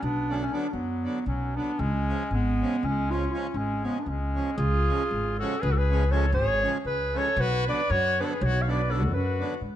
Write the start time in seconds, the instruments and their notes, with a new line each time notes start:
0.03 upright bass B1, trumpet B3, clarinet D4
0.29 accordion D3 F#3 B3 D4, trumpet A3, clarinet C#4
0.34 trumpet B3, clarinet D4
0.41 trumpet A3, clarinet C#4
0.51 accordion D3 F#3 B3 D4, trumpet B3, clarinet D4
0.71 upright bass F#2, trumpet F#3, clarinet B3
1.03 accordion D3 F#3 B3 D4
1.26 upright bass B1, trumpet F#3, clarinet C#4
1.56 accordion D3 F#3 B3 D4, trumpet B3, clarinet D4
1.79 upright bass C#2, trumpet G#3, clarinet C#4
2.08 accordion C#3 F3 G#3 C#4
2.31 upright bass G#1, trumpet G#3, clarinet B3
2.61 accordion C#3 F3 G#3 C#4
2.83 upright bass C#2, clarinet C#4
2.88 trumpet G#3
3.10 accordion C#3 F3 G#3 C#4, clarinet F4
3.14 trumpet C#4
3.31 accordion C#3 F3 G#3 C#4, clarinet F4
3.36 trumpet C#4
3.54 upright bass G#1, trumpet G#3, clarinet C#4
3.82 accordion C#3 F3 G#3 C#4, trumpet G#3, clarinet B3
3.99 clarinet D4
4.03 upright bass C#2, trumpet B3
4.08 trumpet G#3, clarinet C#4
4.34 accordion C#3 F3 G#3 C#4
4.57 upright bass C#2, trumpet F4, clarinet G#4
4.87 accordion C#3 F3 G#3 C#4
5.11 upright bass G#1
5.38 accordion C#3 F3 G#3, trumpet F#4, clarinet A4
5.42 accordion C#4
5.60 upright bass C#2, trumpet G#4, clarinet B4
5.70 trumpet F#4, clarinet A4
5.77 trumpet G#4, clarinet B4
5.90 accordion C#3 F3 G#3 C#4
6.10 accordion C#3 F3 G#3 C#4, trumpet A4, clarinet C#5
6.32 upright bass G#1, trumpet G#4, clarinet C#5
6.62 accordion C#3 F3 G#3 C#4
6.85 upright bass C#2, trumpet G#4, clarinet B4
7.14 accordion C#3 F3 G#3 C#4, trumpet A4, clarinet C#5
7.36 upright bass B1, trumpet F#4, clarinet B4
7.66 accordion D3 F#3 B3 D4, trumpet B4, clarinet D5
7.90 upright bass F#2, trumpet F#4, clarinet C#5
8.19 accordion D3 F#3 B3 D4, trumpet G#4, clarinet B4
8.25 trumpet A4, clarinet C#5
8.31 trumpet G#4, clarinet B4
8.41 upright bass B1, trumpet F#4, clarinet C#5
8.62 trumpet C#5, clarinet F5
8.66 accordion D3 F#3 B3 D4, clarinet D5
8.71 trumpet B4
8.88 accordion D3 F#3 B3 D4, clarinet A4
8.94 trumpet F#4
9.10 upright bass F#2, clarinet B4
9.17 trumpet F#4
9.39 accordion D3 F#3 B3 D4
9.61 upright bass G#2